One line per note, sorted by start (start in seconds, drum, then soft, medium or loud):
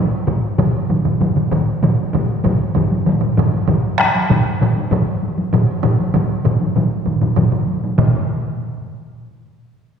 0.27 taiko low-mid medium
0.27 taiko mid medium
0.27 taiko high soft
0.58 taiko low-mid loud
0.58 taiko mid loud
0.58 taiko high medium
0.89 taiko low-mid medium
0.89 taiko mid medium
0.89 taiko high soft
1.05 taiko low-mid medium
1.05 taiko mid medium
1.05 taiko high soft
1.21 taiko low-mid medium
1.21 taiko mid medium
1.21 taiko high medium
1.36 taiko low-mid medium
1.36 taiko mid medium
1.51 taiko low-mid medium
1.51 taiko mid medium
1.51 taiko high soft
1.83 taiko low-mid medium
1.83 taiko mid medium
1.83 taiko high medium
2.13 taiko low-mid medium
2.13 taiko mid medium
2.13 taiko high soft
2.44 taiko low-mid medium
2.44 taiko mid medium
2.44 taiko high medium
2.75 taiko low-mid medium
2.75 taiko mid medium
2.75 taiko high soft
2.91 taiko high medium
3.06 taiko low-mid medium
3.06 taiko mid medium
3.06 taiko high medium
3.21 taiko low-mid medium
3.21 taiko mid medium
3.37 taiko low-mid medium
3.37 taiko mid medium
3.37 taiko high soft
3.54 taiko high medium
3.68 taiko low-mid medium
3.68 taiko mid medium
3.68 taiko high medium
3.99 taiko rim medium
3.99 taiko high medium
4.00 taiko rim medium
4.15 taiko high soft
4.30 taiko low-mid medium
4.30 taiko mid medium
4.30 taiko high medium
4.61 taiko low-mid medium
4.61 taiko mid medium
4.61 taiko high medium
4.76 taiko high soft
4.91 taiko low-mid medium
4.91 taiko mid medium
4.91 taiko high medium
5.22 taiko high soft
5.38 taiko high medium
5.53 taiko low-mid loud
5.53 taiko mid loud
5.53 taiko high medium
5.83 taiko low-mid medium
5.83 taiko mid loud
5.83 taiko high soft
6.00 taiko high soft
6.14 taiko low-mid medium
6.14 taiko mid medium
6.14 taiko high medium
6.45 taiko low-mid medium
6.45 taiko mid medium
6.45 taiko high soft
6.61 taiko high soft
6.76 taiko low-mid medium
6.76 taiko mid medium
6.76 taiko high medium
7.06 taiko low-mid medium
7.06 taiko mid medium
7.06 taiko high soft
7.21 taiko low-mid medium
7.21 taiko mid medium
7.21 taiko high medium
7.37 taiko low-mid medium
7.37 taiko mid medium
7.37 taiko high medium
7.52 taiko low-mid medium
7.52 taiko mid medium
7.68 taiko high soft
7.84 taiko high medium
7.98 taiko low-mid loud
7.98 taiko mid loud
7.98 taiko high medium